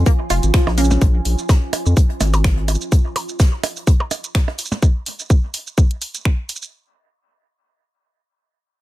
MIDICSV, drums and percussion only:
0, 0, Header, 1, 3, 480
1, 0, Start_track
1, 0, Key_signature, -5, "minor"
1, 0, Tempo, 476190
1, 1024, Time_signature, 4, 2, 24, 8
1, 8883, End_track
2, 0, Start_track
2, 0, Title_t, "Percussion blips"
2, 304, Note_on_c, 9, 77, 58
2, 405, Note_off_c, 9, 77, 0
2, 675, Note_on_c, 9, 56, 62
2, 675, Note_on_c, 9, 77, 77
2, 776, Note_off_c, 9, 56, 0
2, 776, Note_off_c, 9, 77, 0
2, 915, Note_on_c, 9, 64, 73
2, 1016, Note_off_c, 9, 64, 0
2, 1504, Note_on_c, 9, 56, 67
2, 1604, Note_off_c, 9, 56, 0
2, 1743, Note_on_c, 9, 77, 79
2, 1844, Note_off_c, 9, 77, 0
2, 2223, Note_on_c, 9, 64, 78
2, 2223, Note_on_c, 9, 77, 56
2, 2324, Note_off_c, 9, 64, 0
2, 2324, Note_off_c, 9, 77, 0
2, 2355, Note_on_c, 9, 56, 68
2, 2455, Note_off_c, 9, 56, 0
2, 2703, Note_on_c, 9, 77, 55
2, 2804, Note_off_c, 9, 77, 0
2, 3183, Note_on_c, 9, 56, 69
2, 3284, Note_off_c, 9, 56, 0
2, 3664, Note_on_c, 9, 77, 75
2, 3764, Note_off_c, 9, 77, 0
2, 4035, Note_on_c, 9, 56, 68
2, 4135, Note_off_c, 9, 56, 0
2, 4144, Note_on_c, 9, 77, 56
2, 4245, Note_off_c, 9, 77, 0
2, 4515, Note_on_c, 9, 77, 73
2, 4616, Note_off_c, 9, 77, 0
2, 4755, Note_on_c, 9, 64, 77
2, 4856, Note_off_c, 9, 64, 0
2, 8883, End_track
3, 0, Start_track
3, 0, Title_t, "Drums"
3, 63, Note_on_c, 9, 36, 114
3, 63, Note_on_c, 9, 82, 51
3, 69, Note_on_c, 9, 42, 96
3, 164, Note_off_c, 9, 36, 0
3, 164, Note_off_c, 9, 82, 0
3, 169, Note_off_c, 9, 42, 0
3, 303, Note_on_c, 9, 46, 89
3, 303, Note_on_c, 9, 82, 52
3, 306, Note_on_c, 9, 42, 68
3, 404, Note_off_c, 9, 46, 0
3, 404, Note_off_c, 9, 82, 0
3, 407, Note_off_c, 9, 42, 0
3, 435, Note_on_c, 9, 42, 39
3, 435, Note_on_c, 9, 82, 42
3, 536, Note_off_c, 9, 42, 0
3, 536, Note_off_c, 9, 82, 0
3, 543, Note_on_c, 9, 26, 108
3, 543, Note_on_c, 9, 36, 122
3, 543, Note_on_c, 9, 38, 127
3, 553, Note_on_c, 9, 42, 92
3, 643, Note_off_c, 9, 38, 0
3, 644, Note_off_c, 9, 26, 0
3, 644, Note_off_c, 9, 36, 0
3, 654, Note_off_c, 9, 42, 0
3, 680, Note_on_c, 9, 38, 43
3, 781, Note_off_c, 9, 38, 0
3, 783, Note_on_c, 9, 46, 88
3, 783, Note_on_c, 9, 82, 39
3, 787, Note_on_c, 9, 42, 66
3, 849, Note_off_c, 9, 82, 0
3, 849, Note_on_c, 9, 82, 50
3, 884, Note_off_c, 9, 46, 0
3, 888, Note_off_c, 9, 42, 0
3, 913, Note_on_c, 9, 38, 45
3, 914, Note_off_c, 9, 82, 0
3, 914, Note_on_c, 9, 82, 41
3, 1014, Note_off_c, 9, 38, 0
3, 1015, Note_off_c, 9, 82, 0
3, 1023, Note_on_c, 9, 36, 118
3, 1023, Note_on_c, 9, 82, 52
3, 1024, Note_on_c, 9, 42, 82
3, 1124, Note_off_c, 9, 36, 0
3, 1124, Note_off_c, 9, 82, 0
3, 1125, Note_off_c, 9, 42, 0
3, 1257, Note_on_c, 9, 42, 72
3, 1263, Note_on_c, 9, 46, 90
3, 1358, Note_off_c, 9, 42, 0
3, 1364, Note_off_c, 9, 46, 0
3, 1395, Note_on_c, 9, 82, 42
3, 1496, Note_off_c, 9, 82, 0
3, 1503, Note_on_c, 9, 36, 119
3, 1503, Note_on_c, 9, 82, 53
3, 1504, Note_on_c, 9, 42, 85
3, 1509, Note_on_c, 9, 38, 126
3, 1604, Note_off_c, 9, 36, 0
3, 1604, Note_off_c, 9, 82, 0
3, 1605, Note_off_c, 9, 42, 0
3, 1609, Note_off_c, 9, 38, 0
3, 1743, Note_on_c, 9, 46, 89
3, 1747, Note_on_c, 9, 42, 74
3, 1844, Note_off_c, 9, 46, 0
3, 1848, Note_off_c, 9, 42, 0
3, 1875, Note_on_c, 9, 82, 43
3, 1975, Note_off_c, 9, 82, 0
3, 1983, Note_on_c, 9, 42, 85
3, 1984, Note_on_c, 9, 36, 115
3, 1984, Note_on_c, 9, 82, 54
3, 2084, Note_off_c, 9, 36, 0
3, 2084, Note_off_c, 9, 42, 0
3, 2084, Note_off_c, 9, 82, 0
3, 2114, Note_on_c, 9, 42, 46
3, 2215, Note_off_c, 9, 42, 0
3, 2221, Note_on_c, 9, 38, 51
3, 2223, Note_on_c, 9, 46, 92
3, 2223, Note_on_c, 9, 82, 54
3, 2230, Note_on_c, 9, 42, 65
3, 2322, Note_off_c, 9, 38, 0
3, 2324, Note_off_c, 9, 46, 0
3, 2324, Note_off_c, 9, 82, 0
3, 2331, Note_off_c, 9, 42, 0
3, 2355, Note_on_c, 9, 42, 36
3, 2355, Note_on_c, 9, 82, 43
3, 2357, Note_off_c, 9, 42, 0
3, 2357, Note_on_c, 9, 42, 46
3, 2456, Note_off_c, 9, 82, 0
3, 2458, Note_off_c, 9, 42, 0
3, 2463, Note_on_c, 9, 26, 107
3, 2464, Note_on_c, 9, 36, 117
3, 2466, Note_on_c, 9, 38, 125
3, 2467, Note_on_c, 9, 42, 84
3, 2564, Note_off_c, 9, 26, 0
3, 2564, Note_off_c, 9, 36, 0
3, 2567, Note_off_c, 9, 38, 0
3, 2568, Note_off_c, 9, 42, 0
3, 2593, Note_on_c, 9, 42, 45
3, 2694, Note_off_c, 9, 42, 0
3, 2703, Note_on_c, 9, 46, 90
3, 2703, Note_on_c, 9, 82, 40
3, 2706, Note_on_c, 9, 42, 74
3, 2769, Note_off_c, 9, 82, 0
3, 2769, Note_on_c, 9, 82, 54
3, 2804, Note_off_c, 9, 46, 0
3, 2806, Note_off_c, 9, 42, 0
3, 2834, Note_off_c, 9, 82, 0
3, 2834, Note_on_c, 9, 82, 42
3, 2935, Note_off_c, 9, 82, 0
3, 2944, Note_on_c, 9, 36, 119
3, 2944, Note_on_c, 9, 82, 54
3, 2948, Note_on_c, 9, 42, 82
3, 3044, Note_off_c, 9, 36, 0
3, 3044, Note_off_c, 9, 82, 0
3, 3048, Note_off_c, 9, 42, 0
3, 3183, Note_on_c, 9, 46, 90
3, 3186, Note_on_c, 9, 42, 70
3, 3284, Note_off_c, 9, 46, 0
3, 3286, Note_off_c, 9, 42, 0
3, 3315, Note_on_c, 9, 82, 44
3, 3415, Note_off_c, 9, 82, 0
3, 3423, Note_on_c, 9, 42, 92
3, 3423, Note_on_c, 9, 82, 57
3, 3424, Note_on_c, 9, 36, 117
3, 3424, Note_on_c, 9, 38, 127
3, 3524, Note_off_c, 9, 36, 0
3, 3524, Note_off_c, 9, 38, 0
3, 3524, Note_off_c, 9, 42, 0
3, 3524, Note_off_c, 9, 82, 0
3, 3664, Note_on_c, 9, 46, 91
3, 3668, Note_on_c, 9, 42, 67
3, 3764, Note_off_c, 9, 46, 0
3, 3769, Note_off_c, 9, 42, 0
3, 3795, Note_on_c, 9, 82, 43
3, 3801, Note_on_c, 9, 42, 49
3, 3896, Note_off_c, 9, 82, 0
3, 3902, Note_off_c, 9, 42, 0
3, 3903, Note_on_c, 9, 82, 57
3, 3904, Note_on_c, 9, 36, 114
3, 3906, Note_on_c, 9, 42, 83
3, 4004, Note_off_c, 9, 36, 0
3, 4004, Note_off_c, 9, 82, 0
3, 4007, Note_off_c, 9, 42, 0
3, 4142, Note_on_c, 9, 42, 69
3, 4143, Note_on_c, 9, 46, 89
3, 4143, Note_on_c, 9, 82, 56
3, 4243, Note_off_c, 9, 42, 0
3, 4244, Note_off_c, 9, 46, 0
3, 4244, Note_off_c, 9, 82, 0
3, 4275, Note_on_c, 9, 42, 37
3, 4275, Note_on_c, 9, 82, 45
3, 4376, Note_off_c, 9, 42, 0
3, 4376, Note_off_c, 9, 82, 0
3, 4383, Note_on_c, 9, 26, 108
3, 4383, Note_on_c, 9, 36, 117
3, 4384, Note_on_c, 9, 42, 99
3, 4386, Note_on_c, 9, 38, 127
3, 4484, Note_off_c, 9, 26, 0
3, 4484, Note_off_c, 9, 36, 0
3, 4485, Note_off_c, 9, 42, 0
3, 4487, Note_off_c, 9, 38, 0
3, 4517, Note_on_c, 9, 38, 38
3, 4618, Note_off_c, 9, 38, 0
3, 4618, Note_on_c, 9, 42, 73
3, 4623, Note_on_c, 9, 46, 91
3, 4623, Note_on_c, 9, 82, 43
3, 4689, Note_off_c, 9, 82, 0
3, 4689, Note_on_c, 9, 82, 55
3, 4719, Note_off_c, 9, 42, 0
3, 4724, Note_off_c, 9, 46, 0
3, 4755, Note_off_c, 9, 82, 0
3, 4755, Note_on_c, 9, 82, 44
3, 4758, Note_on_c, 9, 38, 41
3, 4856, Note_off_c, 9, 82, 0
3, 4858, Note_off_c, 9, 38, 0
3, 4863, Note_on_c, 9, 36, 117
3, 4864, Note_on_c, 9, 82, 54
3, 4964, Note_off_c, 9, 36, 0
3, 4964, Note_off_c, 9, 82, 0
3, 5104, Note_on_c, 9, 46, 90
3, 5104, Note_on_c, 9, 82, 31
3, 5205, Note_off_c, 9, 46, 0
3, 5205, Note_off_c, 9, 82, 0
3, 5235, Note_on_c, 9, 82, 45
3, 5336, Note_off_c, 9, 82, 0
3, 5343, Note_on_c, 9, 36, 118
3, 5344, Note_on_c, 9, 82, 57
3, 5444, Note_off_c, 9, 36, 0
3, 5445, Note_off_c, 9, 82, 0
3, 5584, Note_on_c, 9, 46, 88
3, 5584, Note_on_c, 9, 82, 31
3, 5684, Note_off_c, 9, 46, 0
3, 5684, Note_off_c, 9, 82, 0
3, 5715, Note_on_c, 9, 82, 44
3, 5816, Note_off_c, 9, 82, 0
3, 5823, Note_on_c, 9, 36, 115
3, 5824, Note_on_c, 9, 82, 58
3, 5924, Note_off_c, 9, 36, 0
3, 5925, Note_off_c, 9, 82, 0
3, 5955, Note_on_c, 9, 42, 37
3, 6056, Note_off_c, 9, 42, 0
3, 6064, Note_on_c, 9, 46, 91
3, 6064, Note_on_c, 9, 82, 58
3, 6165, Note_off_c, 9, 46, 0
3, 6165, Note_off_c, 9, 82, 0
3, 6195, Note_on_c, 9, 42, 36
3, 6195, Note_on_c, 9, 82, 47
3, 6296, Note_off_c, 9, 42, 0
3, 6296, Note_off_c, 9, 82, 0
3, 6303, Note_on_c, 9, 36, 117
3, 6304, Note_on_c, 9, 26, 112
3, 6404, Note_off_c, 9, 26, 0
3, 6404, Note_off_c, 9, 36, 0
3, 6543, Note_on_c, 9, 46, 89
3, 6543, Note_on_c, 9, 82, 42
3, 6609, Note_off_c, 9, 82, 0
3, 6609, Note_on_c, 9, 82, 55
3, 6644, Note_off_c, 9, 46, 0
3, 6674, Note_off_c, 9, 82, 0
3, 6674, Note_on_c, 9, 82, 44
3, 6775, Note_off_c, 9, 82, 0
3, 8883, End_track
0, 0, End_of_file